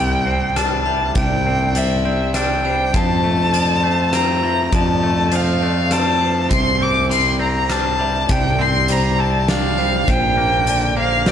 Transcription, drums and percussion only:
0.56 cross-stick, closed hi-hat
1.15 kick, closed hi-hat
1.75 closed hi-hat
2.34 cross-stick, closed hi-hat
2.94 kick, closed hi-hat
3.54 closed hi-hat
4.13 cross-stick, closed hi-hat
4.72 kick, closed hi-hat
5.32 closed hi-hat
5.91 cross-stick, closed hi-hat
6.51 kick, closed hi-hat
7.11 closed hi-hat
7.70 cross-stick, closed hi-hat
8.29 kick, closed hi-hat
8.88 closed hi-hat
9.48 snare, closed hi-hat
10.08 kick, closed hi-hat
10.67 closed hi-hat
11.26 snare, closed hi-hat

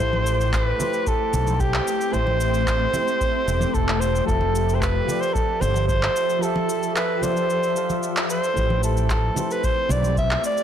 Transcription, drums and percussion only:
0.00 kick, shaker
0.13 high conga
0.27 shaker
0.41 shaker
0.53 kick, clap, shaker
0.80 high conga, low conga, shaker
0.93 shaker
1.07 kick, shaker
1.33 low conga, shaker
1.47 high conga, shaker
1.60 kick, shaker
1.74 clap
1.88 shaker
2.01 shaker
2.14 kick, shaker
2.27 high conga
2.40 shaker
2.54 shaker
2.67 kick, clap, shaker
2.94 high conga, low conga, shaker
3.08 shaker
3.21 kick, shaker
3.48 shaker
3.61 high conga, shaker
3.75 kick, shaker
3.89 clap
4.02 shaker
4.16 shaker
4.28 kick, shaker
4.41 high conga
4.55 shaker
4.69 shaker
4.82 kick, clap, shaker
5.08 high conga, low conga, shaker
5.23 shaker
5.35 kick, shaker
5.61 low conga, shaker
5.74 high conga, shaker
5.89 kick, shaker
6.03 clap
6.16 shaker
6.30 shaker
6.43 shaker
6.56 high conga
6.69 shaker
6.83 shaker
6.96 clap, shaker
7.22 high conga, low conga, shaker
7.37 shaker
7.50 shaker
7.63 shaker
7.76 shaker
7.90 high conga, shaker
8.03 shaker
8.17 clap, shaker
8.30 shaker
8.44 shaker
8.57 kick, shaker
8.70 high conga
8.83 shaker
8.97 shaker
9.10 kick, clap, shaker
9.36 high conga, low conga, shaker
9.51 shaker
9.64 kick, shaker
9.89 low conga, shaker
10.03 high conga, shaker
10.17 kick, shaker
10.31 clap
10.44 shaker
10.57 shaker

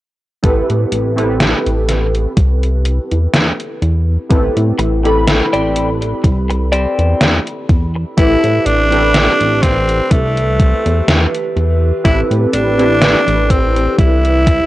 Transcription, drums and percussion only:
0.43 kick, closed hi-hat
0.70 closed hi-hat
0.92 closed hi-hat
1.18 closed hi-hat
1.40 snare, closed hi-hat
1.66 closed hi-hat
1.89 snare, closed hi-hat
2.15 closed hi-hat
2.37 kick, closed hi-hat
2.63 closed hi-hat
2.85 closed hi-hat
3.12 closed hi-hat
3.34 snare, closed hi-hat
3.60 closed hi-hat
3.82 closed hi-hat
4.31 kick, closed hi-hat
4.57 closed hi-hat
4.79 closed hi-hat
5.05 closed hi-hat
5.27 snare, closed hi-hat
5.54 closed hi-hat
5.76 closed hi-hat
6.02 closed hi-hat
6.24 kick, closed hi-hat
6.50 closed hi-hat
6.73 closed hi-hat
6.99 closed hi-hat
7.21 snare, closed hi-hat
7.47 closed hi-hat
7.69 kick, closed hi-hat
8.18 kick, closed hi-hat
8.44 closed hi-hat
8.66 closed hi-hat
8.92 closed hi-hat
9.14 snare, closed hi-hat
9.41 closed hi-hat
9.63 kick, snare, closed hi-hat
9.89 closed hi-hat
10.11 kick, closed hi-hat
10.37 closed hi-hat
10.60 kick, closed hi-hat
10.86 closed hi-hat
11.08 snare, closed hi-hat
11.34 closed hi-hat
11.57 closed hi-hat
12.05 kick, closed hi-hat
12.31 closed hi-hat
12.53 closed hi-hat
12.79 closed hi-hat
13.02 snare, closed hi-hat
13.28 closed hi-hat
13.50 kick, closed hi-hat
13.76 closed hi-hat
13.99 kick, closed hi-hat
14.25 closed hi-hat
14.47 kick, closed hi-hat

